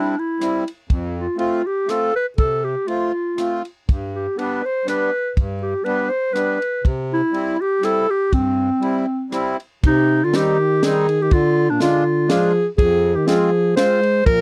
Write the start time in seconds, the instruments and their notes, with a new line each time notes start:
Already playing: accordion G3 C4 E4, clarinet D4
0.19 clarinet E4
0.40 accordion G3 C4 E4, cross-stick, ride
0.68 ride
0.89 accordion F2, kick, ride
1.17 clarinet F4
1.37 accordion A3 C4 F4, clarinet F4, ride
1.66 clarinet G4
1.87 accordion A3 C4 F4, clarinet A4, cross-stick, ride
2.16 clarinet B4
2.37 accordion C3, clarinet A4, kick, ride
2.64 clarinet G4
2.87 accordion A3 C4 F4, clarinet F4, ride
3.37 accordion A3 C4 F4, cross-stick, ride
3.65 ride
3.89 accordion G2, kick, ride
4.15 clarinet G4
4.36 accordion G3 B3 D4, clarinet B4, ride
4.66 clarinet C5
4.85 accordion G3 B3 D4, clarinet B4, cross-stick, ride
5.36 accordion G2, kick, ride
5.62 clarinet G4
5.84 accordion G3 B3 D4, clarinet B4, ride
6.09 clarinet C5
6.33 accordion G3 B3 D4, clarinet B4, cross-stick, ride
6.62 ride
6.84 accordion C3, kick, ride
7.13 clarinet E4
7.32 accordion G3 C4 E4, ride
7.61 clarinet G4
7.81 accordion G3 C4 E4, clarinet A4, cross-stick, ride
8.10 clarinet G4
8.32 accordion G2, clarinet C4, kick, ride
8.80 accordion G3 C4 E4, ride
9.30 accordion G3 C4 E4, cross-stick, ride
9.60 ride
9.83 accordion C3, euphonium C3, clarinet D#4, kick, crash
10.24 euphonium D3, clarinet F4
10.32 euphonium D#3, accordion G3 C4 D#4, clarinet G4, snare, ride
10.82 euphonium D#3, accordion G3 C4 D#4, clarinet G#4, snare, ride
11.09 ride
11.21 euphonium D#3, clarinet G4
11.31 accordion D3, euphonium D3, clarinet F4, kick, ride
11.70 euphonium A#2, clarinet D4
11.79 euphonium D3, accordion G#3 D4 F4, clarinet F4, snare, ride
12.27 euphonium F3, accordion G#3 D4 F4, clarinet G#4, snare, ride
12.77 accordion F2, euphonium F3, clarinet G#4, kick, ride
13.15 euphonium D#3, clarinet G4
13.26 euphonium F3, accordion G#3 C4 F4, clarinet G#4, snare, ride
13.75 accordion G#3 C4 F4, euphonium G#3, clarinet C5, snare, ride
14.03 ride
14.25 accordion A#2, euphonium F3, clarinet A#4, kick, ride